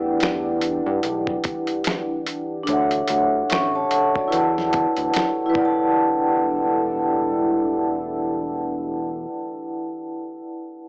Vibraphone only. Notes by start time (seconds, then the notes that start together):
Already playing: E4 B4 D5 F#5 G5
2.63 D4 A4
2.68 C#5 E5
2.73 F#5
3.50 C#6
3.75 C#5 A5
3.90 A4 F#5
4.15 F#4 D5
4.27 E4 B4 D5
4.33 F#5 G5 A5
5.46 E4 B4
5.54 D5 F#5
5.61 G5 A5